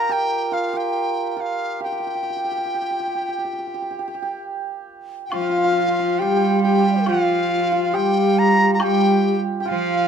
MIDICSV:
0, 0, Header, 1, 6, 480
1, 0, Start_track
1, 0, Tempo, 857143
1, 996, Time_signature, 4, 2, 24, 8
1, 1482, Tempo, 884956
1, 3882, Tempo, 863309
1, 5554, End_track
2, 0, Start_track
2, 0, Title_t, "Dizi"
2, 0, Program_c, 0, 73
2, 0, Note_on_c, 0, 82, 89
2, 68, Note_on_c, 0, 79, 92
2, 76, Note_off_c, 0, 82, 0
2, 298, Note_on_c, 0, 77, 74
2, 306, Note_off_c, 0, 79, 0
2, 430, Note_on_c, 0, 79, 76
2, 438, Note_off_c, 0, 77, 0
2, 736, Note_off_c, 0, 79, 0
2, 736, Note_on_c, 0, 79, 49
2, 786, Note_on_c, 0, 77, 76
2, 794, Note_off_c, 0, 79, 0
2, 1010, Note_off_c, 0, 77, 0
2, 1025, Note_on_c, 0, 79, 77
2, 2441, Note_off_c, 0, 79, 0
2, 2896, Note_on_c, 0, 79, 51
2, 2927, Note_on_c, 0, 77, 78
2, 2935, Note_off_c, 0, 79, 0
2, 3403, Note_on_c, 0, 79, 82
2, 3411, Note_off_c, 0, 77, 0
2, 3639, Note_off_c, 0, 79, 0
2, 3642, Note_on_c, 0, 79, 82
2, 3882, Note_on_c, 0, 77, 90
2, 3891, Note_off_c, 0, 79, 0
2, 4369, Note_on_c, 0, 79, 89
2, 4377, Note_off_c, 0, 77, 0
2, 4614, Note_on_c, 0, 82, 102
2, 4622, Note_off_c, 0, 79, 0
2, 4806, Note_off_c, 0, 82, 0
2, 4809, Note_on_c, 0, 82, 63
2, 4860, Note_on_c, 0, 79, 96
2, 4869, Note_off_c, 0, 82, 0
2, 5183, Note_off_c, 0, 79, 0
2, 5295, Note_on_c, 0, 79, 63
2, 5335, Note_on_c, 0, 77, 81
2, 5344, Note_off_c, 0, 79, 0
2, 5554, Note_off_c, 0, 77, 0
2, 5554, End_track
3, 0, Start_track
3, 0, Title_t, "Hammered dulcimer"
3, 0, Program_c, 1, 15
3, 0, Note_on_c, 1, 65, 69
3, 0, Note_on_c, 1, 70, 76
3, 51, Note_on_c, 1, 67, 72
3, 287, Note_off_c, 1, 65, 0
3, 289, Note_on_c, 1, 65, 63
3, 408, Note_off_c, 1, 67, 0
3, 410, Note_on_c, 1, 67, 65
3, 762, Note_off_c, 1, 65, 0
3, 765, Note_on_c, 1, 65, 60
3, 1008, Note_off_c, 1, 67, 0
3, 1010, Note_on_c, 1, 67, 55
3, 1038, Note_off_c, 1, 67, 0
3, 1040, Note_on_c, 1, 67, 45
3, 1074, Note_off_c, 1, 67, 0
3, 1076, Note_on_c, 1, 67, 45
3, 1117, Note_off_c, 1, 67, 0
3, 1119, Note_on_c, 1, 67, 42
3, 1156, Note_off_c, 1, 67, 0
3, 1158, Note_on_c, 1, 67, 45
3, 1202, Note_off_c, 1, 67, 0
3, 1205, Note_on_c, 1, 67, 39
3, 1245, Note_off_c, 1, 67, 0
3, 1247, Note_on_c, 1, 67, 46
3, 1286, Note_off_c, 1, 67, 0
3, 1288, Note_on_c, 1, 67, 38
3, 1322, Note_off_c, 1, 67, 0
3, 1325, Note_on_c, 1, 67, 43
3, 1366, Note_off_c, 1, 67, 0
3, 1369, Note_on_c, 1, 67, 38
3, 1406, Note_off_c, 1, 67, 0
3, 1408, Note_on_c, 1, 67, 44
3, 1441, Note_off_c, 1, 67, 0
3, 1443, Note_on_c, 1, 67, 41
3, 1484, Note_off_c, 1, 67, 0
3, 1486, Note_on_c, 1, 67, 40
3, 1513, Note_off_c, 1, 70, 0
3, 1533, Note_off_c, 1, 67, 0
3, 1535, Note_on_c, 1, 67, 37
3, 1572, Note_off_c, 1, 67, 0
3, 1575, Note_on_c, 1, 67, 42
3, 1620, Note_off_c, 1, 67, 0
3, 1623, Note_on_c, 1, 67, 33
3, 1671, Note_off_c, 1, 67, 0
3, 1673, Note_on_c, 1, 67, 39
3, 1711, Note_off_c, 1, 67, 0
3, 1713, Note_on_c, 1, 67, 35
3, 1753, Note_off_c, 1, 67, 0
3, 1755, Note_on_c, 1, 67, 40
3, 1787, Note_off_c, 1, 67, 0
3, 1789, Note_on_c, 1, 67, 32
3, 1825, Note_off_c, 1, 67, 0
3, 1827, Note_on_c, 1, 67, 38
3, 1878, Note_off_c, 1, 67, 0
3, 1881, Note_on_c, 1, 67, 39
3, 1914, Note_off_c, 1, 67, 0
3, 1916, Note_on_c, 1, 67, 42
3, 1960, Note_off_c, 1, 67, 0
3, 1962, Note_on_c, 1, 67, 38
3, 1990, Note_off_c, 1, 67, 0
3, 1992, Note_on_c, 1, 67, 40
3, 2035, Note_off_c, 1, 67, 0
3, 2037, Note_on_c, 1, 67, 35
3, 2074, Note_off_c, 1, 67, 0
3, 2076, Note_on_c, 1, 67, 45
3, 2117, Note_off_c, 1, 67, 0
3, 2119, Note_on_c, 1, 67, 39
3, 2163, Note_off_c, 1, 67, 0
3, 2165, Note_on_c, 1, 67, 45
3, 2209, Note_off_c, 1, 67, 0
3, 2211, Note_on_c, 1, 67, 41
3, 2256, Note_off_c, 1, 67, 0
3, 2258, Note_on_c, 1, 67, 49
3, 2292, Note_off_c, 1, 67, 0
3, 2294, Note_on_c, 1, 67, 44
3, 2335, Note_off_c, 1, 67, 0
3, 2337, Note_on_c, 1, 67, 46
3, 2614, Note_off_c, 1, 65, 0
3, 2935, Note_on_c, 1, 65, 76
3, 2982, Note_off_c, 1, 65, 0
3, 2984, Note_on_c, 1, 65, 56
3, 3025, Note_off_c, 1, 65, 0
3, 3027, Note_on_c, 1, 65, 58
3, 3070, Note_off_c, 1, 65, 0
3, 3072, Note_on_c, 1, 65, 54
3, 3105, Note_off_c, 1, 65, 0
3, 3107, Note_on_c, 1, 65, 68
3, 3149, Note_off_c, 1, 65, 0
3, 3151, Note_on_c, 1, 65, 57
3, 3189, Note_off_c, 1, 65, 0
3, 3191, Note_on_c, 1, 65, 58
3, 3234, Note_off_c, 1, 65, 0
3, 3236, Note_on_c, 1, 65, 53
3, 3295, Note_off_c, 1, 65, 0
3, 3297, Note_on_c, 1, 65, 67
3, 3416, Note_off_c, 1, 67, 0
3, 3418, Note_on_c, 1, 67, 73
3, 3448, Note_off_c, 1, 67, 0
3, 3450, Note_on_c, 1, 67, 53
3, 3497, Note_off_c, 1, 67, 0
3, 3499, Note_on_c, 1, 67, 58
3, 3538, Note_off_c, 1, 67, 0
3, 3541, Note_on_c, 1, 67, 46
3, 3574, Note_off_c, 1, 67, 0
3, 3577, Note_on_c, 1, 67, 51
3, 3617, Note_off_c, 1, 67, 0
3, 3619, Note_on_c, 1, 67, 44
3, 3649, Note_off_c, 1, 67, 0
3, 3651, Note_on_c, 1, 67, 53
3, 3698, Note_off_c, 1, 67, 0
3, 3700, Note_on_c, 1, 67, 46
3, 3732, Note_off_c, 1, 67, 0
3, 3734, Note_on_c, 1, 67, 57
3, 3780, Note_off_c, 1, 67, 0
3, 3782, Note_on_c, 1, 67, 54
3, 3818, Note_off_c, 1, 67, 0
3, 3820, Note_on_c, 1, 67, 60
3, 3876, Note_off_c, 1, 65, 0
3, 3879, Note_on_c, 1, 65, 74
3, 4240, Note_off_c, 1, 65, 0
3, 4242, Note_on_c, 1, 65, 74
3, 4361, Note_off_c, 1, 67, 0
3, 4363, Note_on_c, 1, 67, 76
3, 4843, Note_off_c, 1, 67, 0
3, 4845, Note_on_c, 1, 67, 81
3, 5286, Note_off_c, 1, 67, 0
3, 5289, Note_on_c, 1, 67, 54
3, 5315, Note_off_c, 1, 65, 0
3, 5317, Note_on_c, 1, 65, 74
3, 5554, Note_off_c, 1, 65, 0
3, 5554, Note_off_c, 1, 67, 0
3, 5554, End_track
4, 0, Start_track
4, 0, Title_t, "Xiao"
4, 0, Program_c, 2, 77
4, 2937, Note_on_c, 2, 65, 92
4, 3410, Note_on_c, 2, 67, 80
4, 3418, Note_off_c, 2, 65, 0
4, 3645, Note_off_c, 2, 67, 0
4, 3655, Note_on_c, 2, 67, 82
4, 3781, Note_off_c, 2, 67, 0
4, 3784, Note_on_c, 2, 77, 31
4, 3799, Note_off_c, 2, 77, 0
4, 3802, Note_on_c, 2, 74, 38
4, 3823, Note_off_c, 2, 74, 0
4, 3826, Note_on_c, 2, 72, 44
4, 3846, Note_off_c, 2, 72, 0
4, 3850, Note_on_c, 2, 70, 44
4, 3875, Note_off_c, 2, 70, 0
4, 3878, Note_on_c, 2, 67, 50
4, 3892, Note_on_c, 2, 65, 76
4, 3901, Note_off_c, 2, 67, 0
4, 4361, Note_on_c, 2, 67, 84
4, 4369, Note_off_c, 2, 65, 0
4, 4844, Note_off_c, 2, 67, 0
4, 4851, Note_on_c, 2, 67, 89
4, 5156, Note_off_c, 2, 67, 0
4, 5319, Note_on_c, 2, 65, 68
4, 5554, Note_off_c, 2, 65, 0
4, 5554, End_track
5, 0, Start_track
5, 0, Title_t, "Cello"
5, 0, Program_c, 3, 42
5, 2930, Note_on_c, 3, 53, 72
5, 3415, Note_on_c, 3, 55, 85
5, 3423, Note_off_c, 3, 53, 0
5, 3888, Note_on_c, 3, 53, 74
5, 3896, Note_off_c, 3, 55, 0
5, 4373, Note_on_c, 3, 55, 79
5, 4382, Note_off_c, 3, 53, 0
5, 4846, Note_off_c, 3, 55, 0
5, 4849, Note_on_c, 3, 55, 80
5, 5155, Note_off_c, 3, 55, 0
5, 5332, Note_on_c, 3, 53, 83
5, 5554, Note_off_c, 3, 53, 0
5, 5554, End_track
6, 0, Start_track
6, 0, Title_t, "Drums"
6, 2930, Note_on_c, 9, 76, 53
6, 2984, Note_off_c, 9, 76, 0
6, 3877, Note_on_c, 9, 76, 48
6, 3933, Note_off_c, 9, 76, 0
6, 4364, Note_on_c, 9, 77, 44
6, 4419, Note_off_c, 9, 77, 0
6, 4842, Note_on_c, 9, 76, 63
6, 4898, Note_off_c, 9, 76, 0
6, 5554, End_track
0, 0, End_of_file